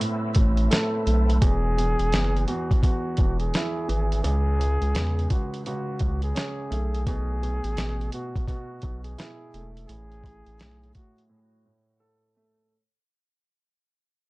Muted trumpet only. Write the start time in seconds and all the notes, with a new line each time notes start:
1.42 G#4
2.47 F#4
2.84 F#4
3.40 G#4
4.24 G#4
5.31 F#4
5.66 F#4
6.24 G#4
7.07 G#4
8.13 F#4
8.48 F#4
9.03 G#4
9.87 G#4
10.95 F#4